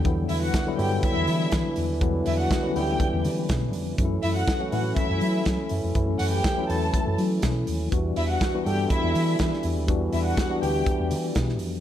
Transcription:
<<
  \new Staff \with { instrumentName = "Violin section" } { \time 4/4 \key e \dorian \tempo 4 = 122 r8 <e' e''>16 <fis' fis''>8. <g' g''>8 <e' e''>4. r8 | r8 <e' e''>16 <fis' fis''>8. <g' g''>4 r4. | r8 <e' e''>16 <fis' fis''>8. <fis' fis''>8 <e' e''>4. r8 | r8 <fis' fis''>16 <g' g''>8. <a' a''>4 r4. |
r8 <e' e''>16 <fis' fis''>8. <g' g''>8 <e' e''>4. r8 | r8 <e' e''>16 <fis' fis''>8. <g' g''>4 r4. | }
  \new Staff \with { instrumentName = "French horn section" } { \time 4/4 \key e \dorian <e d' e' b'>1~ | <e d' e' b'>1 | <e cis' e' a'>1~ | <e cis' e' a'>1 |
<e g d' e'>1~ | <e g d' e'>1 | }
  \new Staff \with { instrumentName = "Tine electric piano" } { \time 4/4 \key e \dorian <d fis g b e'>4 r16 <d fis g b e'>16 <d fis g b e'>4.~ <d fis g b e'>16 r8. | <d fis g b e'>4 r16 <d fis g b cis'>16 <d e g b e'>4.~ <d e g b e'>16 r8. | <e fis a cis' dis' e'>4 r16 <e fis a cis' fis'>16 <e fis a cis' e'>4.~ <e fis a cis' e'>16 r8. | <e fis a cis' e'>4 r16 <e fis a cis' e'>16 <e fis a cis' e'>4.~ <e fis a cis' e'>16 r8. |
<e g b d' fis'>4 r16 <e g b d' fis'>16 <e g b d' a'>4.~ <e g b d' a'>16 r8. | <e g b d' fis'>4 r16 <e g b d' fis'>16 <e g b d' g'>4.~ <e g b d' g'>16 r8. | }
  \new Staff \with { instrumentName = "Fingered electric bass" } { \clef bass \time 4/4 \key e \dorian e,8 e,8 r8 g,8 r16 e,16 e8 e16 r16 e,16 dis,16 | e,8 e,8 r8 d,8 r16 e,16 e8 b,8 f,8 | fis,8 fis,8 r8 a,8 r16 fis,16 fis8 fis16 r16 fis,16 f,16 | fis,8 fis,8 r8 e,8 r16 fis,16 fis8 b,8 dis,8 |
e,8 e,8 r8 g,8 r16 e,16 e8 e16 r16 e,16 dis,16 | e,8 e,8 r8 d,8 r16 e,16 e8 b,8 f,8 | }
  \new DrumStaff \with { instrumentName = "Drums" } \drummode { \time 4/4 <hh bd>8 hho8 <hh bd sn>8 hho8 <hh bd>8 hho8 <hh bd sn>8 hho8 | <hh bd>8 hho8 <hh bd sn>8 hho8 <hh bd>8 hho8 <hh bd sn>8 hho8 | <hh bd>8 hho8 <hh bd sn>8 hho8 <hh bd>8 hho8 <hh bd sn>8 hho8 | <hh bd>8 hho8 <hh bd sn>8 hho8 <hh bd>8 hho8 <hh bd sn>8 hho8 |
<hh bd>8 hho8 <hh bd sn>8 hho8 <hh bd>8 hho8 <hh bd sn>16 sn16 hho8 | <hh bd>8 hho8 <hh bd sn>8 hho8 <hh bd>8 hho8 <hh bd sn>16 sn16 hho8 | }
>>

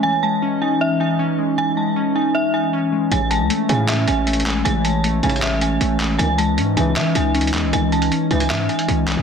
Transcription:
<<
  \new Staff \with { instrumentName = "Synth bell" } { \time 4/4 \key cis \minor \tempo 4 = 156 gis''8 a''4 gis''8 e''8 gis''4. | gis''8 a''4 gis''8 e''8 gis''4. | gis''8 a''4 gis''8 e''8 gis''4. | gis''8 a''4 gis''8 e''8 gis''4. |
gis''8 a''4 gis''8 e''8 gis''4. | gis''8 a''4 gis''8 e''8 gis''4. | }
  \new Staff \with { instrumentName = "Ambient pad" } { \time 4/4 \key cis \minor << { <e dis''>1~ | <e dis''>1 | <cis'' e''>1~ | <cis'' e''>1 |
<e dis''>1~ | <e dis''>1 | } \\ { cis'1~ | cis'1~ | cis'1~ | cis'1 |
cis'1~ | cis'1 | } >> }
  \new Staff \with { instrumentName = "Synth keys" } { \time 4/4 \key cis \minor e8 gis8 cis'8 dis'4 dis'8 cis'8 gis8 | e8 gis8 cis'8 dis'4 dis'8 cis'8 gis8 | e8 gis8 a8 cis'4 cis'8 a8 gis8 | e8 gis8 a8 cis'4 cis'8 a8 gis8 |
e8 gis8 cis'8 dis'4 dis'8 cis'8 gis8 | e8 gis8 cis'8 dis'4 dis'8 cis'8 gis8 | }
  \new Staff \with { instrumentName = "Brass ensemble" } { \clef bass \time 4/4 \key cis \minor r1 | r1 | <a,, gis, cis>16 r4 r16 <a,, gis, cis>8. r4. r16 | <a,, gis, cis>16 r4 r16 <a,, gis, cis>8. r4. r16 |
<gis,, e, dis>16 r4 r16 <cis, gis, e>8. r4. r16 | <gis,, e, dis>16 r4 r16 <cis, gis, e>8. r4. r16 | }
  \new Staff \with { instrumentName = "808-style bass" } { \clef bass \time 4/4 \key cis \minor r1 | r1 | a,,8. cis,16 r8 a,4 a,,4. | a,,4. a,,4. a,,4 |
cis,4 gis,8 cis,8 e8 cis,4 e,16 cis,16 | cis,4 r8 cis,8 gis,8 r8 cis,8 bis,,16 cis,16 | }
  \new DrumStaff \with { instrumentName = "Drums" } \drummode { \time 4/4 r4 r4 r4 r4 | r4 r4 r4 r4 | hh8 hh8 hh8 hh8 <hc hh>8 hh8 \tuplet 3/2 { hh16 hh16 hh16 <hc hh>16 r16 r16 } | hh8 hh8 \tuplet 3/2 { hh16 r16 r16 hh16 hh16 hh16 } <hc hh>8 hh8 hh8 <hc hh>8 |
hh8 hh8 hh8 hh8 <hc hh>8 hh8 \tuplet 3/2 { hh16 hh16 hh16 <hc hh>16 r16 r16 } | hh8 hh16 hh16 hh8 hh16 hh16 <hc hh>8 hh16 hh16 hh8 <hc hh>8 | }
>>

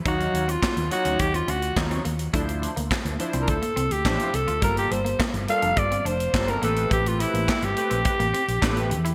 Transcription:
<<
  \new Staff \with { instrumentName = "Alto saxophone" } { \time 4/4 \key a \phrygian \tempo 4 = 105 ges'8. f'8. ges'8 g'16 f'16 ges'8 r4 | r4. r16. bes'32 a'8. g'8. a'8 | bes'16 g'16 c''8 r8 f''8 d''16. d''32 c''8. bes'16 a'8 | g'16 f'16 e'8 e'16 g'2~ g'8 r16 | }
  \new Staff \with { instrumentName = "Analog polysynth" } { \time 4/4 \key a \phrygian <ges ees' des'' f''>8 r4 <ges ees' f' des''>8 r4 <ges ees' f' des''>8 r8 | <f d' e' c''>8 r4 <f d' e' c''>8 r4 <f d' e' c''>8 r8 | <g bes f' a'>8 r4 <g bes f' a'>8 r4 <g bes f' a'>8 <a c' g' b'>8~ | <a c' g' b'>4 r8 <a c' g' b'>8 r4 <a c' g' b'>8 r8 | }
  \new Staff \with { instrumentName = "Clean electric guitar" } { \time 4/4 \key a \phrygian ees'16 r8 c'16 c'16 r8 des'16 r16 c'16 des'16 r8 c'16 bes16 r16 | a16 r8 bes16 bes16 r8 c'16 r16 bes16 c'16 r16 d'16 r8 f'16 | g16 r8 bes16 bes16 r8 d'16 r16 c'16 d'16 r8 c'16 bes16 r16 | a16 r8 bes16 bes16 r8 c'16 r16 bes16 c'16 r16 d'16 r8 e'16 | }
  \new Staff \with { instrumentName = "Fingered electric bass" } { \clef bass \time 4/4 \key a \phrygian ees,8 ees,8 r16 ees,16 r16 d,16 ees,8 d,8 ees,8 ees,8 | d,8. d,16 r16 d,16 r16 c,16 d,16 r16 c,16 d,16 a,,16 r16 c,16 d,16 | g,,8 g,,8 r16 g,,16 r16 f,,16 g,,8 f,,8 g,,8 a,,8 | a,,8. a,,16 r16 g,,16 r16 bes,,16 r16 a,,16 r16 bes,,16 a,,8 e,8 | }
  \new DrumStaff \with { instrumentName = "Drums" } \drummode { \time 4/4 <hh bd>16 hh16 hh16 hh16 <hc bd sn>16 hh16 hh16 hh16 <hh bd>16 hh16 hh16 hh16 <hc bd sn>16 hh16 hh16 hh16 | <hh bd>16 hh16 hh16 hh16 <hc bd sn>16 hh16 hh16 hh16 <hh bd>16 hh16 hh16 hh16 <hc bd sn>16 hh16 hh16 hh16 | <hh bd>16 hh16 hh16 hh16 <hc bd sn>16 hh16 hh16 hh16 <hh bd>16 hh16 hh16 hh16 <hc bd sn>16 hh16 hh16 hh16 | <hh bd>16 hh16 hh16 hh16 <hc bd sn>16 hh16 hh16 hh16 <hh bd>16 hh16 hh16 hh16 <hc bd sn>16 hh16 hh16 hh16 | }
>>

